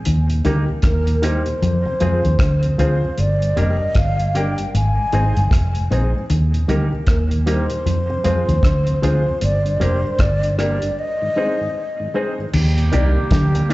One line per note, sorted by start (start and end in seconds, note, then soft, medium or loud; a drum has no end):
0.05 0.42 D#2 medium
0.05 0.29 D#3 medium
0.05 closed hi-hat medium
0.30 0.38 D#2 medium
0.30 0.38 A#2 medium
0.30 closed hi-hat medium
0.44 0.67 D2 medium
0.44 0.59 D3 medium
0.44 0.58 D#3 medium
0.44 0.63 G3 medium
0.44 0.58 G3 medium
0.44 0.58 A#3 medium
0.44 0.64 A#3 medium
0.44 0.66 D#4 medium
0.44 0.64 D#4 medium
0.44 0.66 G4 medium
0.44 0.64 G4 medium
0.44 0.66 A#4 loud
0.44 closed hi-hat medium
0.69 0.77 D#2 medium
0.69 0.77 A#2 soft
0.82 1.43 D#2 medium
0.82 1.07 D#3 medium
0.82 1.27 A#4 medium
0.82 kick loud
0.82 cross-stick loud
0.82 closed hi-hat medium
1.07 1.16 D#2 medium
1.07 1.16 A#2 medium
1.07 closed hi-hat medium
1.22 1.36 D#3 medium
1.22 1.41 G3 medium
1.22 1.36 G3 medium
1.22 1.36 A#3 medium
1.22 1.42 A#3 loud
1.22 1.43 D#4 medium
1.22 1.42 D#4 loud
1.22 1.44 G4 medium
1.22 1.42 G4 loud
1.22 1.44 A#4 medium
1.22 2.80 C5 medium
1.22 closed hi-hat medium
1.46 1.55 D#2 medium
1.46 1.55 A#2 medium
1.46 closed hi-hat medium
1.62 1.84 F2 medium
1.62 1.76 F3 medium
1.62 closed hi-hat medium
1.86 1.94 F2 medium
1.86 1.94 C3 medium
1.86 muted clean electric guitar stroke soft
2.00 2.23 F2 medium
2.00 2.14 F3 medium
2.00 2.16 F3 medium
2.00 2.19 G#3 medium
2.00 2.14 G#3 medium
2.00 2.14 C4 medium
2.00 2.19 C4 medium
2.00 2.21 F4 medium
2.00 2.20 F4 medium
2.00 2.22 G#4 medium
2.00 2.20 G#4 medium
2.00 2.22 C5 medium
2.00 closed hi-hat medium
2.25 2.38 D#2 medium
2.25 2.33 F2 medium
2.25 2.33 C3 medium
2.25 2.34 D#3 medium
2.25 closed hi-hat soft
2.39 2.75 D2 loud
2.39 2.63 D3 medium
2.39 kick loud
2.39 cross-stick loud
2.39 closed hi-hat loud
2.63 2.72 F2 medium
2.63 2.72 C3 medium
2.63 closed hi-hat medium
2.78 3.01 D2 medium
2.78 2.93 D3 medium
2.78 2.92 F3 medium
2.78 2.97 G#3 medium
2.78 2.92 G#3 medium
2.78 2.92 C4 medium
2.78 2.98 C4 medium
2.78 3.00 F4 medium
2.78 2.98 F4 medium
2.78 3.00 G#4 medium
2.78 2.98 G#4 medium
2.78 3.00 C5 loud
2.78 3.21 C5 medium
2.78 closed hi-hat medium
3.03 3.11 F2 soft
3.03 3.11 C3 soft
3.18 3.54 G1 medium
3.18 3.41 G2 medium
3.18 3.60 D5 loud
3.18 closed hi-hat medium
3.42 3.50 G2 medium
3.42 closed hi-hat medium
3.56 3.79 F1 medium
3.56 3.71 F2 medium
3.56 3.70 D3 medium
3.56 3.75 G3 medium
3.56 3.70 G3 medium
3.56 3.75 A#3 medium
3.56 3.70 A#3 medium
3.56 3.78 D4 medium
3.56 3.76 D4 medium
3.56 3.78 G4 medium
3.56 3.76 G4 medium
3.56 3.78 A#4 loud
3.56 4.00 D#5 loud
3.56 closed hi-hat medium
3.81 3.89 G2 medium
3.95 4.55 G1 medium
3.95 4.19 G2 medium
3.95 4.38 F5 loud
3.95 kick loud
3.95 cross-stick loud
3.95 closed hi-hat medium
4.19 4.28 G2 medium
4.19 closed hi-hat medium
4.35 4.48 D3 medium
4.35 4.53 G3 medium
4.35 4.48 G3 medium
4.35 4.48 A#3 medium
4.35 4.54 A#3 medium
4.35 4.56 D4 medium
4.35 4.54 D4 medium
4.35 4.56 G4 medium
4.35 4.54 G4 medium
4.35 4.56 A#4 loud
4.35 4.75 G5 loud
4.35 closed hi-hat medium
4.58 4.67 G2 medium
4.58 closed hi-hat medium
4.74 4.96 G#1 loud
4.74 4.88 G#2 medium
4.74 5.88 G#5 loud
4.74 closed hi-hat medium
4.98 5.06 G#2 medium
5.12 5.35 G#1 medium
5.12 5.27 G#2 medium
5.12 5.26 D#3 medium
5.12 5.26 G#3 medium
5.12 5.31 G#3 medium
5.12 5.26 C4 medium
5.12 5.32 C4 medium
5.12 5.34 D#4 medium
5.12 5.32 D#4 medium
5.12 5.34 G#4 medium
5.12 5.32 G#4 medium
5.12 5.34 C5 loud
5.12 closed hi-hat medium
5.37 5.51 G1 medium
5.37 5.46 G2 medium
5.37 5.45 G#2 medium
5.37 closed hi-hat soft
5.51 5.87 F1 medium
5.51 5.75 F2 medium
5.51 kick loud
5.51 cross-stick loud
5.51 closed hi-hat loud
5.75 5.84 G#2 medium
5.75 closed hi-hat soft
5.90 6.13 A#1 medium
5.90 6.05 A#2 medium
5.90 6.04 D#3 medium
5.90 6.04 G#3 medium
5.90 6.09 G#3 medium
5.90 6.04 C4 medium
5.90 6.10 C4 medium
5.90 6.11 D#4 medium
5.90 6.10 D#4 medium
5.90 6.12 G#4 medium
5.90 6.10 G#4 medium
5.90 6.12 C5 medium
5.90 closed hi-hat medium
6.14 6.23 G#2 medium
6.14 6.21 G#4 soft
6.14 6.21 C5 soft
6.30 6.66 D#2 medium
6.30 6.53 D#3 medium
6.30 closed hi-hat medium
6.54 6.62 D#2 medium
6.54 6.62 A#2 medium
6.54 closed hi-hat medium
6.68 6.91 D2 medium
6.68 6.83 D3 medium
6.68 6.81 D#3 medium
6.68 6.87 G3 medium
6.68 6.82 G3 medium
6.68 6.87 A#3 medium
6.68 6.82 A#3 medium
6.68 6.89 D#4 medium
6.68 6.88 D#4 medium
6.68 6.90 G4 medium
6.68 6.88 G4 loud
6.68 6.90 A#4 loud
6.68 closed hi-hat medium
6.92 7.01 D#2 soft
6.92 7.01 A#2 medium
7.07 7.66 D#2 loud
7.07 7.31 D#3 medium
7.07 7.18 A#4 medium
7.07 kick medium
7.07 cross-stick loud
7.07 closed hi-hat medium
7.31 7.40 D#2 medium
7.31 7.40 A#2 medium
7.31 closed hi-hat medium
7.46 7.59 D#3 medium
7.46 7.65 G3 medium
7.46 7.60 G3 medium
7.46 7.60 A#3 medium
7.46 7.65 A#3 medium
7.46 7.67 D#4 medium
7.46 7.65 D#4 medium
7.46 7.68 G4 medium
7.46 7.66 G4 medium
7.46 7.68 A#4 loud
7.46 9.00 C5 medium
7.46 closed hi-hat medium
7.70 7.79 D#2 medium
7.70 7.79 A#2 medium
7.70 closed hi-hat medium
7.86 8.08 F2 medium
7.86 8.00 F3 medium
7.86 closed hi-hat medium
8.10 8.18 F2 medium
8.10 8.18 C3 medium
8.10 muted clean electric guitar stroke soft
8.24 8.47 F2 medium
8.24 8.38 F3 medium
8.24 8.39 F3 medium
8.24 8.43 G#3 medium
8.24 8.38 G#3 medium
8.24 8.43 C4 medium
8.24 8.38 C4 medium
8.24 8.46 F4 medium
8.24 8.43 F4 medium
8.24 8.46 G#4 medium
8.24 8.44 G#4 medium
8.24 8.46 C5 loud
8.24 closed hi-hat medium
8.48 8.63 D#2 medium
8.48 8.57 F2 medium
8.48 8.57 C3 medium
8.48 8.58 D#3 medium
8.48 closed hi-hat soft
8.63 8.99 D2 medium
8.63 8.87 D3 medium
8.63 kick loud
8.63 cross-stick loud
8.63 closed hi-hat medium
8.87 8.96 F2 medium
8.87 8.96 C3 medium
8.87 closed hi-hat soft
9.02 9.25 D2 medium
9.02 9.17 D3 medium
9.02 9.16 F3 medium
9.02 9.21 G#3 medium
9.02 9.16 G#3 medium
9.02 9.16 C4 medium
9.02 9.21 C4 medium
9.02 9.23 F4 medium
9.02 9.22 F4 medium
9.02 9.24 G#4 medium
9.02 9.22 G#4 medium
9.02 9.24 C5 loud
9.02 9.40 C5 medium
9.02 closed hi-hat medium
9.27 9.35 F2 medium
9.27 9.35 C3 medium
9.41 9.78 G1 loud
9.41 9.65 G2 medium
9.41 9.77 D5 loud
9.41 closed hi-hat loud
9.65 9.74 G2 medium
9.65 9.74 D3 medium
9.65 closed hi-hat soft
9.77 9.95 F2 medium
9.77 9.93 G3 medium
9.77 9.99 G3 medium
9.77 9.93 A#3 medium
9.77 10.01 D4 medium
9.77 9.94 D4 medium
9.77 9.84 D5 medium
9.81 10.03 F1 medium
9.81 9.99 A#3 medium
9.81 9.99 D4 medium
9.81 10.02 G4 medium
9.81 10.00 G4 medium
9.81 10.02 A#4 loud
9.81 10.23 C5 loud
9.81 closed hi-hat medium
10.04 10.13 G2 medium
10.04 10.12 D3 soft
10.19 10.78 G1 medium
10.19 10.43 G2 medium
10.19 10.60 D5 loud
10.19 kick medium
10.19 cross-stick loud
10.19 closed hi-hat medium
10.43 10.52 G2 medium
10.43 10.52 D3 medium
10.43 closed hi-hat medium
10.58 10.71 G3 medium
10.58 10.77 G3 medium
10.58 10.72 A#3 medium
10.58 10.77 A#3 medium
10.58 10.79 D4 medium
10.58 10.72 D4 medium
10.58 10.78 D4 medium
10.58 10.80 G4 medium
10.58 10.78 G4 medium
10.58 10.80 A#4 loud
10.58 11.01 D5 loud
10.58 cross-stick medium
10.58 closed hi-hat medium
10.82 10.91 G2 medium
10.82 10.91 D3 medium
10.82 closed hi-hat medium
10.99 12.15 D#5 loud
11.22 11.30 G#2 medium
11.22 11.30 D#3 medium
11.36 11.55 G#3 medium
11.36 11.50 G#3 medium
11.36 11.50 C4 medium
11.36 11.55 C4 medium
11.36 11.57 D#4 medium
11.36 11.50 D#4 medium
11.36 11.55 D#4 medium
11.36 11.58 G#4 medium
11.36 11.56 G#4 medium
11.36 11.58 C5 loud
11.61 11.69 G#2 medium
11.61 11.69 D#3 medium
12.00 12.08 G#2 medium
12.00 12.08 D#3 medium
12.14 12.33 G#3 medium
12.14 12.28 G#3 medium
12.14 12.28 C4 medium
12.14 12.33 C4 medium
12.14 12.35 D#4 medium
12.14 12.28 D#4 medium
12.14 12.34 D#4 medium
12.14 12.36 G#4 medium
12.14 12.34 G#4 medium
12.14 12.36 C5 loud
12.38 12.47 G#2 soft
12.38 12.47 D#3 medium
12.38 12.45 G#4 soft
12.38 12.45 C5 soft
12.53 12.90 D#2 loud
12.53 12.77 D#3 loud
12.53 13.74 G3 medium
12.53 13.74 A#3 medium
12.53 13.74 G4 medium
12.53 crash loud
12.77 12.86 D#2 medium
12.77 12.86 A#2 medium
12.77 closed hi-hat medium
12.92 13.15 C2 loud
12.92 13.07 C3 medium
12.92 13.05 D#3 medium
12.92 13.06 G3 medium
12.92 13.11 A#3 medium
12.92 13.11 D4 medium
12.92 13.06 D4 medium
12.92 13.13 D#4 loud
12.92 13.13 G4 medium
12.92 13.11 G4 loud
12.92 13.12 A#4 loud
12.92 13.14 D5 loud
12.92 closed hi-hat medium
13.16 13.25 D#2 medium
13.16 13.25 A#2 medium
13.31 13.74 D2 medium
13.31 13.55 D3 medium
13.31 kick loud
13.31 snare loud
13.31 closed hi-hat medium
13.55 13.64 D#2 medium
13.55 13.64 A#2 medium
13.55 muted clean electric guitar stroke medium
13.55 closed hi-hat medium
13.69 13.74 D#3 medium
13.69 13.74 G3 medium
13.69 13.74 A#3 loud
13.69 13.74 D4 loud
13.69 13.74 D#4 medium
13.69 13.74 G4 medium
13.69 closed hi-hat medium